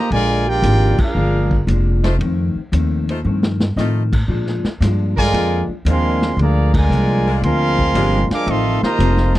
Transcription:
Already playing: A3 A#3 D#4 F4 G4 C5 D#5 A#5
0.11 A#1 A#2 D3 F3 G#3 D4 F4 A#4 D5 G#5, ride
0.48 G#3 D4 F4 G4 A#4 D5 G5
0.62 G#1 A#2 F3 G#3 D4, hi-hat pedal, ride
0.98 G#3 D4 F4 G#4 A#4 F5, kick, crash
1.15 G1 A#2 F3 G#3 D4
1.51 kick
1.67 F1 A#2 F3 G#3 D4, hi-hat pedal, ride
2.03 A3 D#4 F4 C5, snare, ride
2.19 F2 D#3 A3, ride
2.23 C4
2.55 muted upright bass stroke
2.72 D#2 F2 D#3 A3 C4, hi-hat pedal, ride
3.09 A3 D#4 F4 C5, ride
3.25 F2 G2 D#3 A3 C4
3.43 snare
3.60 snare
3.76 F2 A2 D#3 A3 C4 D#4 F4 D#5, snare, hi-hat pedal
4.13 kick, crash
4.28 A#2 F3 G#3 D4
4.47 snare
4.64 muted upright bass stroke, snare
4.81 G2 A#2 F3 G#3 D4, snare, hi-hat pedal, ride
5.17 D3 F3 G#3 F4 A#4 D5 G#5, kick, ride
5.33 F2 A#2 F3 G#3 D4, ride
5.68 muted upright bass stroke
5.85 D#2 A#2 F3 G#3 C4 D4 F4 A#4, hi-hat pedal, ride
5.89 A#4 F5 G#5 C6
6.22 snare
6.37 D2 A#2 D3 F3 G#3 A#3, ride
6.41 D4 G#4 D5 F5 A#5
6.74 D3 F3 G#3 F4 A#4 D5 G#5, kick, crash
6.89 C2 A#2 F3 G#3 D4, hi-hat pedal
7.26 G#3 D4 F4 A#4
7.42 D2 A#2 F3 G#3 C4 D4 A#4 F5 G#5 C6, ride
7.78 kick
7.94 G1 A#2 F3 G#3 D4 F4 G4, hi-hat pedal, ride
8.30 F3 G#3 D4 A#4 F5 G#5 D6, muted upright bass stroke, snare, ride
8.47 A1 D#3 F3 A3 C4 D#4 A4 D#5 F5 C6, ride
8.51 A4
8.82 C3 D#3 A#3 F4 C5 D#5 A#5, muted upright bass stroke, snare
8.99 F1 F3 A3 C4 D#4 F4 A4 C5, hi-hat pedal, ride
9.17 snare
9.34 C3 D#3 A3 F4 C5 D#5 A5, snare, ride

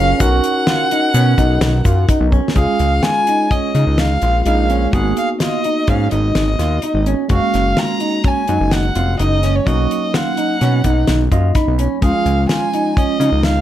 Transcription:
Already playing: F#1 C#4 F4 G#4 A#4 F5
0.18 B1 C#4 D#4 F#4 A#4 F#5, kick, closed hi-hat, shaker
0.44 closed hi-hat
0.67 F4, snare, closed hi-hat
0.91 D#4, closed hi-hat
1.14 B2 C#4, closed hi-hat, shaker
1.38 B1 D#4, kick, closed hi-hat, shaker
1.61 B1, snare, closed hi-hat
1.85 F#2 F4, kick, closed hi-hat, shaker
2.09 D#4, kick, closed hi-hat
2.20 B1
2.32 C#4, kick, shaker
2.48 snare
2.55 C#2 G#3 C#4 F4 G#4 F5, kick, closed hi-hat
2.79 C#2, closed hi-hat
3.03 F4 G#5, snare, closed hi-hat
3.27 D#4, closed hi-hat
3.51 C#4 D#5, kick, closed hi-hat
3.75 C#3 D#4, closed hi-hat
3.87 C#2
3.98 F5, snare, closed hi-hat
4.22 A#1 F4, closed hi-hat
4.44 A#1 G#3 C#4 D#4 F4 G#4 F5, closed hi-hat
4.70 C#4, closed hi-hat
4.91 G#1 A#3 B3 D#4 F#4 G#4 F#5, kick, closed hi-hat
5.17 F5, closed hi-hat
5.40 F4 D#5, snare, closed hi-hat
5.64 D#4, closed hi-hat
5.87 G#2 C#4 F5, kick, closed hi-hat
6.11 G#1 D#4 D#5, closed hi-hat
6.35 G#1, snare, closed hi-hat
6.59 D#2 F4, snare, closed hi-hat
6.82 D#4, closed hi-hat
6.94 G#1
7.06 C#4, closed hi-hat
7.28 F#1 G#3 A#3 C#4 F#4, kick, closed hi-hat
7.33 F5
7.54 F#1, snare, closed hi-hat
7.77 F4 A#5, snare, closed hi-hat
8.00 D#4, closed hi-hat
8.24 C#4 G#5, kick, closed hi-hat
8.48 F#2 D#4, closed hi-hat
8.60 F#1
8.71 F#5, snare, closed hi-hat
8.95 F1 F4, closed hi-hat
9.19 F#1 D#4 D#5, closed hi-hat
9.43 C#4, snare, closed hi-hat
9.56 C#5
9.65 B1 F#3 A#3 C#4 D#4 F#4 D#5, kick, closed hi-hat
9.91 closed hi-hat
10.14 F4 F#5, snare, closed hi-hat
10.37 D#4, closed hi-hat
10.61 B2 C#4, snare, closed hi-hat
10.84 B1 D#4, kick, closed hi-hat
11.07 B1, snare, closed hi-hat
11.32 F#2 F4 D#5, kick, closed hi-hat
11.55 D#4 B5, kick, snare, closed hi-hat
11.68 B1
11.79 C#4, closed hi-hat
12.01 C#2 F3 G#3 C#4 F4 G#4 F5, kick, closed hi-hat
12.26 C#2, closed hi-hat
12.49 F4 G#5, snare, closed hi-hat
12.73 D#4, closed hi-hat
12.97 C#4 D#5, kick, closed hi-hat
13.20 C#3 D#4, closed hi-hat
13.32 C#2
13.43 F5, snare, closed hi-hat

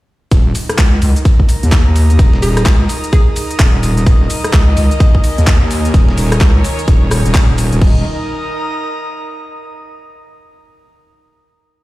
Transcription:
0.31 D#1 D#4, kick, closed hi-hat, ride, shaker
0.55 open hi-hat, ride, shaker
0.69 A#4, cross-stick, closed hi-hat, shaker
0.78 C#2, kick, snare, clap, closed hi-hat, ride, shaker
1.02 C#2, open hi-hat, ride, shaker
1.16 closed hi-hat, shaker
1.22 A#5, kick, closed hi-hat, ride, shaker
1.40 kick
1.49 open hi-hat, ride, shaker
1.63 D#2, closed hi-hat, shaker
1.68 D#6
1.72 kick, snare, clap, closed hi-hat, ride, shaker
1.87 D#2
1.96 open hi-hat, ride, shaker
2.10 closed hi-hat, shaker
2.19 D#1, kick, closed hi-hat, ride, shaker
2.33 snare
2.42 D#1 G#4, snare, open hi-hat, ride, shaker
2.57 cross-stick, closed hi-hat, ride, shaker
2.66 C#2, kick, snare, clap, closed hi-hat, ride, shaker
2.89 open hi-hat, ride, shaker
3.04 closed hi-hat, shaker
3.13 G#4, kick, closed hi-hat, ride, shaker
3.36 open hi-hat, ride, shaker
3.51 closed hi-hat, shaker
3.59 D#1, kick, snare, clap, closed hi-hat, open hi-hat, shaker
3.83 open hi-hat, ride, shaker
3.97 closed hi-hat, shaker
4.06 D#1 D#3 A#3 A#4 D#5, kick, closed hi-hat, ride, shaker
4.30 open hi-hat, ride, shaker
4.44 cross-stick, closed hi-hat, shaker
4.53 C#2, kick, snare, clap, closed hi-hat, ride, shaker
4.77 C#2 G#5, open hi-hat, ride, shaker
4.91 closed hi-hat, shaker
5.00 kick, closed hi-hat, ride, shaker
5.15 kick
5.24 open hi-hat, ride, shaker
5.38 D#2, closed hi-hat, shaker
5.47 kick, snare, clap, closed hi-hat, ride, shaker
5.62 D#2
5.71 open hi-hat, ride, shaker
5.85 closed hi-hat, shaker
5.94 D#1 C#5, kick, closed hi-hat, ride, shaker
6.09 snare
6.17 D#1, snare, open hi-hat, ride, shaker
6.32 cross-stick, closed hi-hat, ride, shaker
6.41 C#2, kick, snare, clap, closed hi-hat, ride, shaker
6.64 open hi-hat, ride, shaker
6.79 closed hi-hat, shaker
6.88 D#1, kick, closed hi-hat, ride, shaker
7.11 cross-stick, open hi-hat, ride, shaker
7.25 D#1, closed hi-hat, shaker
7.35 kick, snare, clap, closed hi-hat, open hi-hat, shaker
7.49 D#1
7.58 open hi-hat, ride, shaker
7.72 D#1, closed hi-hat, shaker
7.81 D#1 D#3 A#3 D#4 A#4 D#5, kick, crash
7.90 A#4
7.98 A#5
8.03 D#6

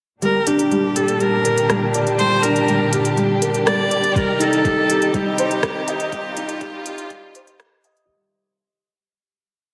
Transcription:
0.22 G1 A#2 D3 G3 D4 G4 A#4, closed hi-hat
0.47 D4 G4, closed hi-hat
0.59 closed hi-hat
0.71 G3, closed hi-hat
0.96 G4 A4, closed hi-hat
1.08 closed hi-hat
1.20 G3 A#4, closed hi-hat
1.45 A#4, closed hi-hat
1.58 closed hi-hat
1.70 G3, cross-stick, closed hi-hat
1.94 D5, closed hi-hat
2.07 closed hi-hat
2.18 G3 C5, closed hi-hat
2.43 D4 A#4, closed hi-hat
2.56 closed hi-hat
2.68 G3, closed hi-hat
2.93 G4, closed hi-hat
3.05 closed hi-hat
3.17 G3, closed hi-hat
3.42 A#4, closed hi-hat
3.54 closed hi-hat
3.66 G3 D5, cross-stick, closed hi-hat
3.91 D5, closed hi-hat
4.04 closed hi-hat
4.15 C2 C3 D#3 G3 D#4 A#4, kick, closed hi-hat
4.39 D#4 A4, closed hi-hat
4.53 closed hi-hat
4.65 G3, kick, closed hi-hat
4.89 G4, closed hi-hat
5.02 closed hi-hat
5.14 G3 G4, kick, closed hi-hat
5.38 C5, closed hi-hat
5.51 closed hi-hat
5.63 G3, kick, cross-stick, closed hi-hat
5.88 D#5, closed hi-hat
6.00 closed hi-hat
6.12 G3 F4, kick, closed hi-hat
6.37 D#4, closed hi-hat
6.49 closed hi-hat
6.61 G3, kick, closed hi-hat
6.86 G4, closed hi-hat
6.98 closed hi-hat
7.10 G3, kick, closed hi-hat
7.35 C5, closed hi-hat
7.47 closed hi-hat
7.60 G3, kick, cross-stick, closed hi-hat
7.84 D#5, closed hi-hat
7.97 closed hi-hat

